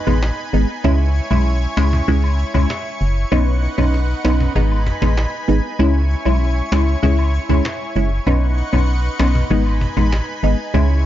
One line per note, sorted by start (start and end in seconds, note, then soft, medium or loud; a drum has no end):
0.00 0.82 D#4 medium
0.00 0.83 B4 medium
0.00 3.28 G#5 medium
0.00 0.82 B5 medium
0.07 0.31 A1 medium
0.07 0.21 G#3 medium
0.07 0.21 B3 medium
0.07 0.21 D#4 medium
0.07 cajon bass loud
0.07 high woodblock medium
0.23 cajon slap loud
0.53 0.65 G#1 loud
0.53 0.68 G#3 medium
0.53 0.68 B3 medium
0.53 0.68 D#4 medium
0.53 cajon slap soft
0.53 cabasa medium
0.84 1.20 C#2 loud
0.84 1.27 G#3 loud
0.84 1.27 C#4 medium
0.84 3.29 E4 medium
0.84 1.27 E4 loud
0.84 3.29 C#5 medium
0.84 4.52 C#6 medium
0.84 cajon bass loud
0.84 high woodblock medium
1.15 cabasa medium
1.30 1.67 B1 loud
1.30 1.73 G#3 medium
1.30 1.74 C#4 medium
1.30 1.74 E4 medium
1.30 cajon bass medium
1.30 high woodblock medium
1.77 2.01 C#2 loud
1.77 2.06 G#3 medium
1.77 2.06 C#4 medium
1.77 2.06 E4 medium
1.77 cajon slap loud
1.77 cabasa medium
1.77 high woodblock medium
1.93 cajon bass loud
2.08 2.44 C#2 loud
2.08 2.51 G#3 loud
2.08 2.51 C#4 medium
2.08 2.51 E4 loud
2.08 cajon bass medium
2.24 high woodblock medium
2.39 cajon slap soft
2.39 cabasa medium
2.54 2.67 C#2 medium
2.54 2.69 G#3 medium
2.54 2.69 C#4 medium
2.54 2.69 E4 medium
2.54 cajon bass loud
2.54 high woodblock medium
2.70 cajon slap loud
3.01 3.25 F#1 loud
3.01 cajon slap soft
3.01 cabasa medium
3.32 3.68 B1 loud
3.32 3.74 B3 medium
3.32 3.75 C#4 medium
3.32 5.77 D#4 medium
3.32 3.75 D#4 loud
3.32 5.77 B4 medium
3.32 4.54 F#5 medium
3.32 cajon bass loud
3.32 high woodblock medium
3.63 cabasa medium
3.78 4.14 B1 medium
3.78 4.21 B3 medium
3.78 4.21 C#4 medium
3.78 4.21 D#4 medium
3.78 cajon bass medium
3.78 high woodblock medium
3.94 cajon slap medium
4.24 4.49 B1 loud
4.24 4.53 B3 medium
4.24 4.53 C#4 medium
4.24 4.53 D#4 medium
4.24 cajon slap loud
4.24 cabasa medium
4.24 high woodblock medium
4.40 cajon bass loud
4.55 4.92 G#1 loud
4.55 4.98 G#3 medium
4.55 4.98 B3 medium
4.55 4.98 D#4 loud
4.55 8.23 G#5 medium
4.55 5.78 B5 medium
4.55 cajon bass medium
4.71 high woodblock medium
4.86 cajon bass medium
4.86 cajon slap medium
4.86 cabasa medium
5.02 5.26 A1 loud
5.02 5.16 G#3 medium
5.02 5.16 B3 medium
5.02 5.17 D#4 medium
5.02 cajon bass loud
5.02 cajon slap medium
5.02 high woodblock medium
5.17 cajon slap loud
5.48 5.61 G#1 loud
5.48 5.62 G#3 medium
5.48 5.63 B3 medium
5.48 5.63 D#4 medium
5.48 cajon slap soft
5.48 cabasa medium
5.79 6.15 C#2 loud
5.79 6.22 G#3 loud
5.79 6.22 C#4 medium
5.79 6.22 E4 loud
5.79 8.25 E4 medium
5.79 8.24 C#5 medium
5.79 8.24 C#6 medium
5.79 high woodblock medium
6.10 cabasa medium
6.25 6.62 B1 medium
6.25 6.68 G#3 medium
6.25 6.68 C#4 medium
6.25 6.68 E4 medium
6.25 high woodblock medium
6.72 6.96 C#2 loud
6.72 7.01 G#3 medium
6.72 7.01 C#4 medium
6.72 7.01 E4 medium
6.72 cajon slap loud
6.72 cabasa medium
6.72 high woodblock medium
7.03 7.39 C#2 loud
7.03 7.45 G#3 medium
7.03 7.46 C#4 medium
7.03 7.46 E4 loud
7.03 cajon bass medium
7.19 high woodblock medium
7.34 cajon slap soft
7.34 cabasa medium
7.49 7.61 C#2 medium
7.49 7.64 G#3 medium
7.49 7.64 C#4 medium
7.49 7.64 E4 medium
7.49 cajon bass loud
7.49 high woodblock medium
7.65 cajon slap loud
7.96 8.20 F#1 medium
7.96 8.10 G#3 medium
7.96 8.10 C#4 medium
7.96 8.10 E4 medium
7.96 cabasa medium
8.26 8.63 B1 loud
8.26 8.69 B3 loud
8.26 8.70 C#4 medium
8.26 10.72 D#4 medium
8.26 8.70 D#4 loud
8.26 10.72 B4 medium
8.26 9.49 F#5 medium
8.26 9.49 C#6 medium
8.26 cajon bass loud
8.26 high woodblock medium
8.58 cabasa medium
8.73 9.09 B1 medium
8.73 9.16 B3 medium
8.73 9.16 C#4 medium
8.73 9.16 D#4 medium
8.73 cajon bass medium
8.73 high woodblock medium
9.19 9.44 B1 loud
9.19 9.48 B3 medium
9.19 9.48 C#4 medium
9.19 9.48 D#4 medium
9.19 cajon slap loud
9.19 cabasa medium
9.19 high woodblock medium
9.35 cajon bass loud
9.50 9.86 G#1 loud
9.50 9.93 G#3 medium
9.50 9.93 B3 medium
9.50 9.93 D#4 loud
9.50 11.06 G#5 medium
9.50 10.73 B5 medium
9.50 cajon bass medium
9.66 high woodblock medium
9.81 cajon bass medium
9.81 cajon slap medium
9.81 cabasa medium
9.97 10.21 A1 loud
9.97 10.11 G#3 medium
9.97 10.11 B3 medium
9.97 10.11 D#4 medium
9.97 cajon bass loud
9.97 high woodblock medium
10.12 cajon slap loud
10.43 10.55 G#1 loud
10.43 10.58 G#3 medium
10.43 10.58 B3 medium
10.43 10.58 D#4 medium
10.43 cabasa medium
10.74 11.06 C#2 loud
10.74 11.06 G#3 loud
10.74 11.06 C#4 medium
10.74 11.06 E4 loud
10.74 11.06 E4 medium
10.74 11.06 C#5 medium
10.74 11.06 C#6 medium
10.74 cajon bass loud
10.74 high woodblock medium